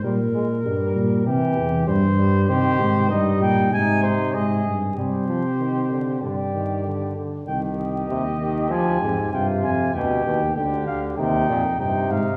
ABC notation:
X:1
M:4/4
L:1/8
Q:1/4=97
K:Cphr
V:1 name="Trumpet"
B4 G2 c2 | [K:Cm] c2 e g a c e z | c4 d3 z | g e3 a2 g a |
g2 g f g2 g f |]
V:2 name="Trumpet"
z8 | [K:Cm] G2 E2 E2 A2 | G4 G3 z | G6 F2 |
G2 G2 E2 E2 |]
V:3 name="Trombone" clef=bass
G, A, G,2 =E,2 G, G, | [K:Cm] E,2 G,2 C,3 z | G, F, E, D, D, E, D, D, | E,2 C, E, F, A,, C,2 |
=B,, B,, D,2 C, _B,, C,2 |]
V:4 name="Tuba" clef=bass
B,,2 G,, B,, C, =E,, G,,2 | [K:Cm] C, A,, G,, B,, A,, z A,, G,, | C,4 G,,3 z | C,,2 E,,2 D,, F,, G,, F,, |
D,, E,, D,, D,, E,, F,, G,, A,, |]